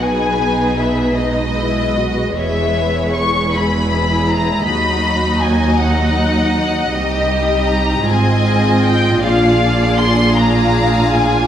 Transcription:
<<
  \new Staff \with { instrumentName = "Violin section" } { \time 6/8 \key b \major \tempo 4. = 52 gis''4 e''8 dis''4. | e''4 cis'''8 b''4 ais''8 | b''4 gis''8 fis''4. | \key bes \mixolydian ees''4 bes''8 aes''4 g''8 |
f''4 c'''8 bes''4 aes''8 | }
  \new Staff \with { instrumentName = "Violin section" } { \time 6/8 \key b \major << { b'4. dis''4. | cis''4. b'4. | dis''2.~ | \key bes \mixolydian dis''4. ees''4. |
d''4. f''4. | } \\ { gis'4. b'4. | b'4. gis'4. | dis'2. | g'4. aes'4. |
aes'2. | } >> }
  \new Staff \with { instrumentName = "Viola section" } { \time 6/8 \key b \major << { dis'4. dis'8 e'8 fis'8 | gis'4. e'4. | fis'4. dis'4. | \key bes \mixolydian ees'4. f'4.~ |
f'4. f'4. | } \\ { b4. gis4.~ | gis4. gis4. | fis2. | g4. c'4. |
d'2. | } >> }
  \new Staff \with { instrumentName = "Cello section" } { \clef bass \time 6/8 \key b \major b,2. | e,2. | dis,2. | \key bes \mixolydian c,4. aes,4. |
bes,2. | }
  \new Staff \with { instrumentName = "Double bass section" } { \clef bass \time 6/8 \key b \major b,,2. | e,,2. | dis,2. | \key bes \mixolydian c,4. aes,,4. |
bes,,2. | }
>>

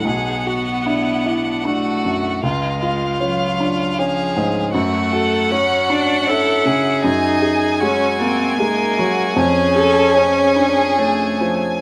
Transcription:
<<
  \new Staff \with { instrumentName = "Violin" } { \time 3/4 \key cis \phrygian \tempo 4 = 77 fis''2. | eis''2. | fis''2. | gis''2.~ |
gis''2. | }
  \new Staff \with { instrumentName = "Violin" } { \time 3/4 \key cis \phrygian gis'8 fis'8 e'8 d'8 fis'4 | eis'8 eis'4. gis'4 | fis'8 a'8 fis'4 a'8 gis'8~ | gis'4 fis'4 dis'8 fis'8 |
gis'8 a'8 gis'2 | }
  \new Staff \with { instrumentName = "Grand piano" } { \time 3/4 \key cis \phrygian b,,8 fis'8 d'8 e'8 d'8 fis,8 | cis,8 eis'8 cis'8 d'8 cis'8 gis,8 | fis,8 fis'8 cis'8 d'8 cis'8 cis8 | fis,8 gis'8 gis8 ais8 gis8 fis8 |
eis,8 gis'8 cis'8 d'8 cis'8 eis8 | }
  \new Staff \with { instrumentName = "Cello" } { \time 3/4 \key cis \phrygian b2 a4 | gis4 fis4 eis4 | a4 cis'8 d'8 e'4 | dis'4 cis'8 bis8 ais4 |
cis'2 a4 | }
>>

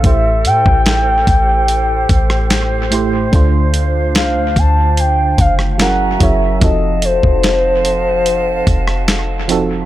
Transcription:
<<
  \new Staff \with { instrumentName = "Soft synth lead" } { \time 4/4 \key d \minor \tempo 4 = 73 e''8 g''2. r8 | r4 f''8 a''8 g''8 f''8 fis''8 e''8 | ees''8 c''2. r8 | }
  \new Staff \with { instrumentName = "Flute section" } { \time 4/4 \key d \minor <g' a' c''>1 | <d' f''>2. <fis' e'' gis'' ais''>4 | <ees'' f'' ges'' a''>1 | }
  \new Staff \with { instrumentName = "FM electric piano" } { \time 4/4 \key d \minor <a, a e' g' c''>4. r2 <a, a e' g' c''>8 | <d a d' f' c''>4. r4. <fis cis' e' gis' ais'>8 <fis cis' e' gis' cis''>8 | <f c' ees' ges' a'>4. r2 <f c' ees' ges' a'>8 | }
  \new Staff \with { instrumentName = "808-style bass" } { \clef bass \time 4/4 \key d \minor a,,8 a,16 a,,8. a,,4 a,,4. | d,4 c,16 d,16 d,4 fis,,4 fis,,8 | f,,8. f,,4.~ f,,16 f,,4. | }
  \new DrumStaff \with { instrumentName = "Drums" } \drummode { \time 4/4 <hh bd>8 hh16 bd16 <hh sn>8 <hh bd>8 hh8 <hh bd>16 ss16 <hh sn>8 hh8 | <hh bd>8 hh8 <hh sn>8 <hh bd>8 hh8 <hh bd>16 ss16 <hh sn>8 <hh bd>8 | <hh bd>8 hh16 bd16 <hh sn>8 hh8 hh8 <hh bd>16 ss16 <hh sn>8 hh8 | }
>>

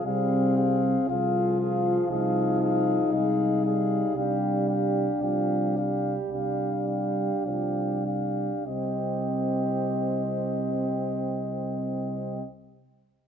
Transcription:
<<
  \new Staff \with { instrumentName = "Cornet" } { \time 4/4 \key c \minor \tempo 4 = 54 f''8 f''8 f''8 f''8 f''8 f''8 f''8 f''8 | f''8 f''8 f''8 f''8 f''8 f''8 f''8 f''8 | ees''1 | }
  \new Staff \with { instrumentName = "Flugelhorn" } { \time 4/4 \key c \minor aes'8 aes'8 aes'8 aes'8 aes'8 aes'8 aes'8 aes'8 | g'8 g'8 g'8 g'8 g'8 g'8 g'8 g'8 | g'1 | }
  \new Staff \with { instrumentName = "French horn" } { \time 4/4 \key c \minor c'4 f'4 ees'2 | d'2 d'2 | c'1 | }
  \new Staff \with { instrumentName = "Trombone" } { \clef bass \time 4/4 \key c \minor g8 r8 f2 aes8 g8~ | g4 f8 g4. f8 r8 | c'1 | }
  \new Staff \with { instrumentName = "Tuba" } { \clef bass \time 4/4 \key c \minor c,4 c,4 c,4 c,4 | c,4 c,4 c,4 c,4 | c,1 | }
>>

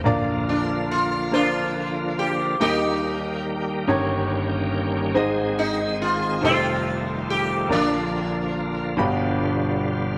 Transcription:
<<
  \new Staff \with { instrumentName = "Grand piano" } { \time 6/8 \key bes \mixolydian \tempo 4. = 47 <bes d' f' bes' d''>4 r8 <bes d' f' bes' c''>4 r8 | <bes ees' g' bes' ees''>4 r8 <des' ees' g' bes' des''>4 r8 | <c' ees' aes' c'' ees''>4 r8 <ees' f' g' a' bes' c''>4 r8 | <bes d' f' bes' d''>4 r8 <b, d' f' g' b''>4 r8 | }
  \new Staff \with { instrumentName = "Grand piano" } { \clef bass \time 6/8 \key bes \mixolydian <bes,, bes,>2. | <ees, ees>4. <g,, g,>4. | <aes,, aes,>4. <f,, f,>4. | <bes,, bes,>4. <g,, g,>4. | }
  \new Staff \with { instrumentName = "Sitar" } { \time 6/8 \key bes \mixolydian r8 d'8 f'8 f'4 g'8 | g'2 r4 | r8 ees'8 f'8 f'4 g'8 | d'2 r4 | }
  \new Staff \with { instrumentName = "Sitar" } { \time 6/8 \key bes \mixolydian r4. <bes d'>4. | <bes ees'>2 r4 | r4. <a c'>4. | <f bes>2 r4 | }
  \new Staff \with { instrumentName = "Tonewheel organ" } { \clef bass \time 6/8 \key bes \mixolydian <d f bes f'>2. | <ees g bes g'>4. <g, ees bes des' g'>4. | <ees aes c' aes'>4. <ees g a f'>4. | <d f bes f'>4. <b, d g ees' f'>4. | }
>>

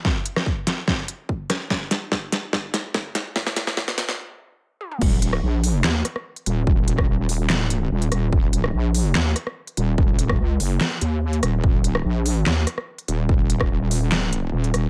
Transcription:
<<
  \new Staff \with { instrumentName = "Wobble bass" } { \clef bass \time 4/4 \key ees \minor \tempo 4 = 145 r1 | r1 | r1 | ees,,4 bes,,4 ees,8 r4 ees,,8 |
ees,,4 ees,,2 ees,,8 ees,,8 | ees,,4 bes,,4 ees,8 r4 ees,,8 | ees,,4 des,8 ges,,8 r8 ees,4 ees,,8 | ees,,4 bes,,4 ees,8 r4 ees,,8 |
ees,,4 ees,,2 ees,,8 ees,,8 | }
  \new DrumStaff \with { instrumentName = "Drums" } \drummode { \time 4/4 <bd sn>8 hh16 <ss sn>16 bd8 <hh sn>8 <bd sn>8 hh8 bd8 <hh ss sn>8 | <bd sn>8 <hh sn>8 <bd sn>8 <hh sn>8 <bd sn>8 <hh sn>8 <bd sn>8 <hh sn>8 | <bd sn>16 sn16 <hh sn>16 sn16 <bd sn>16 sn16 <hh sn>16 sn16 r4 r8 tommh16 toml16 | <cymc bd>8 hh16 ss16 r8 hho8 <hc sn>8 <hh ss>16 ss16 r16 hh16 hh8 |
bd8 hh16 <bd ss>16 r8 hho8 <hc sn>8 hh8 r16 hh16 <hh ss>8 | bd8 hh16 ss16 r8 hho8 <hc sn>8 <hh ss>16 ss16 r16 hh16 hh8 | bd8 hh16 <bd ss>16 r8 hho8 <hc sn>8 hh8 r16 hh16 <hh ss>8 | bd8 hh16 ss16 r8 hho8 <hc sn>8 <hh ss>16 ss16 r16 hh16 hh8 |
bd8 hh16 <bd ss>16 r8 hho8 <hc sn>8 hh8 r16 hh16 <hh ss>8 | }
>>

